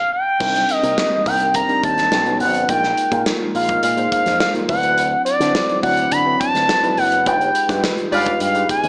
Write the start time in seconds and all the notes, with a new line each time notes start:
Already playing: F5
0.13 G5
0.40 C2 G3 C4 D4 D#4 A#4, kick, crash
0.55 snare, closed hi-hat
0.69 D#5, closed hi-hat
0.82 C3 G3 A#3 C4 D#4 A#4, closed hi-hat
0.98 snare
1.25 C2 G3 C4 D4 D#4 A#4 G5, kick, open hi-hat
1.40 closed hi-hat
1.54 A#5, kick, closed hi-hat
1.68 G3 C4 D4 D#4 A#4, closed hi-hat
1.83 D#2 A5, kick, closed hi-hat
1.98 snare, closed hi-hat
2.11 B1 F#3 B3 C#4 D#4 A4, snare
2.25 F#3 B3 C#4 D#4 B4, closed hi-hat
2.40 G#1 F#5, open hi-hat
2.54 closed hi-hat
2.68 A#1 G#3 A#3 D#4 F4 A#4 G5, kick, closed hi-hat
2.83 snare
2.97 closed hi-hat
3.11 A#2 G#3 A#3 D#4 F4 A#4, kick, closed hi-hat
3.26 snare
3.54 A#1 G#3 A#3 D#4 F4 A#4 F5, open hi-hat
3.68 kick, closed hi-hat
3.83 A#2 F5, closed hi-hat
3.97 G#3 A#3 D#4 F4 C5, closed hi-hat
4.12 F5, kick, closed hi-hat
4.26 F2, snare, closed hi-hat
4.40 F5, snare
4.54 G#3 A#3 D#4 F4 A#4, closed hi-hat
4.68 D2 F#3 C4 D4 E4 B4 F#5, kick, open hi-hat
4.83 closed hi-hat
4.98 closed hi-hat
5.25 D5, closed hi-hat
5.40 D3 F#3 C4 D4 E4 C5, snare, closed hi-hat
5.55 snare
5.69 closed hi-hat
5.82 D2 F#3 C4 D4 E4 D5 F#5, kick, open hi-hat
5.97 closed hi-hat
6.11 D3 B5, kick, closed hi-hat
6.26 F#3 C4 D4 E4 B4
6.40 A5, kick, closed hi-hat
6.54 D2, snare, closed hi-hat
6.69 snare
6.82 F#3 C4 D4 E4 B4, closed hi-hat
6.97 F#1 F#5, open hi-hat
7.12 closed hi-hat
7.26 G1 G#3 D#4 F4 G4 B4 G5, kick, closed hi-hat
7.41 closed hi-hat
7.55 closed hi-hat
7.68 G2 G#3 D#4 F4 G4 B4, kick, snare, closed hi-hat
7.84 snare
7.98 closed hi-hat
8.11 G1 G#3 D#4 F4 G4 G#4 B4 D5 F5, open hi-hat
8.26 kick, closed hi-hat
8.40 G2 F5, closed hi-hat
8.54 G#3 D#4 F4 G4 B4, closed hi-hat
8.69 G#5, kick, closed hi-hat
8.83 D#2, closed hi-hat